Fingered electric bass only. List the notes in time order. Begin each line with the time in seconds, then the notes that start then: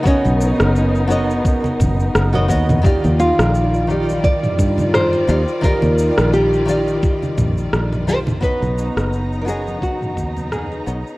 0.26 B1
0.60 F#1
1.80 F#1
2.15 F#1
2.50 D#2
3.05 D#2
3.39 A#1
4.59 G2
5.29 D#2
5.83 D#2
6.18 A#1
7.38 A#1
7.73 A#1
8.08 B1
8.63 B1
8.97 F#1
10.17 D#2
10.87 B1